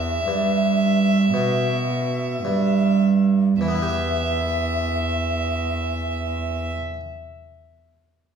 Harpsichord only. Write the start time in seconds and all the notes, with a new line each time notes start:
Already playing: E2 B3 E4 G4
0.28 G2
1.34 B2
2.45 G2
3.61 E3
3.68 B3
3.75 E4
3.82 G4
3.89 E5